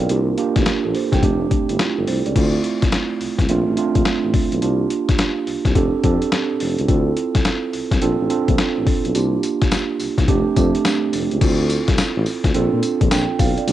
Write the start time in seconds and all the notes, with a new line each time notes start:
Already playing: C4 D4 F4 A4 D5 F5 G5
0.00 A#4
0.09 C2 A#3 D4 F4 G4, closed hi-hat
0.38 A#3 D4 F4 G4, closed hi-hat
0.56 A1, kick, snare, closed hi-hat
0.66 A#1, snare, closed hi-hat
0.85 A#1 A4
0.95 C5, open hi-hat
1.12 C2 G5, kick, snare, closed hi-hat
1.23 F1 A3 C4 D4 G4, kick, closed hi-hat
1.51 G1, kick, closed hi-hat
1.69 G1 E4, closed hi-hat
1.79 F4, snare, closed hi-hat
1.98 G1 A4
2.07 C2 C5, open hi-hat
2.26 C#2 D5, closed hi-hat
2.36 D2 A3 C4 E4 F4, kick, closed hi-hat, crash
2.64 closed hi-hat
2.82 C2, kick, snare, closed hi-hat
2.92 snare, closed hi-hat
3.21 C2, open hi-hat
3.39 C2, kick, snare, closed hi-hat
3.49 A#1 A3 C4 D4 F4, closed hi-hat
3.67 A1
3.77 A3 C4 D4 F4, closed hi-hat
3.95 A#1, kick, closed hi-hat
4.05 A1, snare, closed hi-hat
4.24 A1
4.34 kick, open hi-hat
4.52 B1, closed hi-hat
4.62 C2 A#3 D4 F4 G4, closed hi-hat
4.90 closed hi-hat
5.09 C2, kick, snare, closed hi-hat
5.18 snare, closed hi-hat
5.47 C2, open hi-hat
5.65 C2, kick, snare, closed hi-hat
5.75 F1 C4 D4 G4 A4, kick, closed hi-hat
6.04 F2 C4 D4 G4 A4, kick, closed hi-hat
6.22 closed hi-hat
6.32 snare, closed hi-hat
6.60 F1, open hi-hat
6.79 C#2, closed hi-hat
6.88 D2 C4 E4 F4 A4, kick, closed hi-hat
7.17 closed hi-hat
7.35 C2, kick, snare, closed hi-hat
7.45 snare, closed hi-hat
7.73 C2, open hi-hat
7.91 C2, kick, snare, closed hi-hat
8.01 A#1 C4 D4 F4 A4, closed hi-hat
8.20 A1
8.30 C4 D4 F4 A4, closed hi-hat
8.48 A#1, kick, closed hi-hat
8.58 A1, snare, closed hi-hat
8.77 A1
8.87 kick, open hi-hat
9.05 B1, closed hi-hat
9.14 C2 A#3 D4 F4 G4, closed hi-hat, tambourine
9.43 closed hi-hat, tambourine
9.61 C2, kick, snare, closed hi-hat
9.71 snare, closed hi-hat, tambourine
10.00 C2, open hi-hat, tambourine
10.18 C2, kick, snare, closed hi-hat
10.28 F1 A3 C4 D4 G4, kick, closed hi-hat
10.56 F2 A3 C4 D4 G4, kick, closed hi-hat, tambourine
10.75 closed hi-hat
10.85 snare, closed hi-hat, tambourine
11.13 F1, open hi-hat, tambourine
11.31 C#2, closed hi-hat
11.41 D2 C4 E4 F4 A4, kick, closed hi-hat, crash, tambourine
11.70 closed hi-hat, tambourine
11.88 C2, kick, snare, closed hi-hat
11.98 snare, closed hi-hat, tambourine
12.16 A1
12.26 open hi-hat, tambourine
12.44 D2, kick, snare, closed hi-hat
12.54 A#1 C4 D4 F4 A4, closed hi-hat
12.73 A#2
12.83 closed hi-hat, tambourine
13.01 A#1, kick, closed hi-hat
13.11 A#1 G5, snare, closed hi-hat, tambourine
13.39 B1 F5, kick, open hi-hat, tambourine
13.58 D5, closed hi-hat
13.68 C2 A#3 D4 F4 G4, closed hi-hat, tambourine